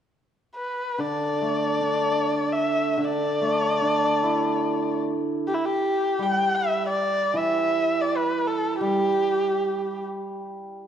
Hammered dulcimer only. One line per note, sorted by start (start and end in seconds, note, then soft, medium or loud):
0.98 2.96 D3 soft
1.41 3.03 A3 soft
1.81 3.43 D4 soft
2.97 5.44 D3 soft
3.41 5.04 A3 soft
3.82 5.45 D4 soft
4.23 5.85 E4 soft
6.19 8.17 G3 soft
7.34 9.28 E3 soft
8.81 10.73 G3 soft